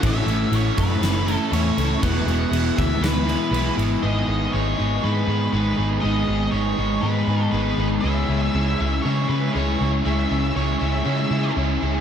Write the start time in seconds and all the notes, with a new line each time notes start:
0.01 A1 A2 E3 A3 C#4 E4, kick, crash
0.06 E5
0.26 A1 A2 E3 A3 E4, crash
0.30 A3 C#4
0.50 A1 A2 E3 A3, crash
0.55 C#4 E4 C#5
0.74 A2 E3 A3, kick, crash
0.78 F#2 B4
1.01 F#1 A2 E3 A3 C#4 E4, snare, crash
1.25 A2 E3 A3 C#4 E4, crash
1.30 A3
1.36 A4
1.51 E2 A2 E3 A3 C#4 E4 C#5, crash
1.76 C#2 A2 E3 C#4 E4, crash
1.80 A3
2.01 E1 E2 B2 E3 G#3 B3 E4 F#5, kick, crash
2.26 E1 E2 B2 E3 B3 E4, crash
2.31 G#3
2.51 E1 E2 B2 E3 G#3 B3, crash
2.56 E4
2.75 D2 E2 B2 E3 E5, kick, crash
3.00 D2 E2 B2 E3 G#3 B3 E4 B4, crash
3.04 snare
3.25 E2 B2 E3 E4, crash
3.30 G#3 B3
3.51 B1 E2 B2 E3 G#3 B3 E4, crash
3.75 G#1 E2 B2 E3 B3 E4
3.79 G#3, crash
4.02 G#1 G#2 D#3 G#3 B3 D#4 G#4 D#5
4.27 G#1 G#3 B3 D#4
4.52 G#1 D#3 G#3 B3 D#4 C#5
4.57 G#4
4.77 G#1 G#2 D#3 G#3 B3 D#4
5.02 G#2 D#3 G#3 B3 D#4 B4
5.07 G#4
5.27 G#2 G#3 B3 D#4 G#4
5.52 G#1 G#2 D#3 G#3 B3 D#4 G#4 B4
5.77 G#1 G#3 B3 D#4 G#4
6.01 G#1 G#2 D#3 G#3 B3 D#4 D#5
6.06 G#4
6.28 G#1 G#3 B3 D#4
6.51 G#1 D#3 G#3 B3 D#4 C#5
6.56 G#4
6.77 G#1 G#2 D#3 G#3 B3 D#4
7.01 G#2 D#3 G#3 B3 D#4 B4
7.07 G#4
7.27 G#2 G#3 B3 D#4 G#4
7.51 G#1 G#2 D#3 G#3 B3 D#4 B4
7.57 G#4
7.78 G#1 G#3 B3 D#4 G#4
8.01 C#2 C#3 G#3 E5
8.05 C#4 E4 G#4
8.29 C#2 G#3 C#4 E4
8.55 C#2 C#3 G#3 C#4 E4 G#4
8.80 C#2 C#3 G#3 C#4 E4
9.02 C#3 C#5
9.06 G#3 C#4 E4 G#4
9.29 C#3 C#4 E4 G#4 B4
9.33 G#3
9.53 C#2 C#3 G#3 C#5
9.57 C#4 E4 G#4
9.79 C#2 C#4 E4 G#4
9.84 G#3
10.04 C#2 C#3 G#3 C#4 E4 G#4 E5
10.29 C#2 G#3 C#4 E4
10.55 C#2 C#3 G#3 C#4 E4 G#4 C#5
10.79 C#2 C#3 G#3 C#4 E4 E5
11.04 C#3 G#3 C#4 E4 G#4
11.29 C#3 G#3 C#4 E4 G#4
11.56 C#2 C#3 G#3 C#4 E4 G#4
11.80 C#2 G#3 C#4 E4 G#4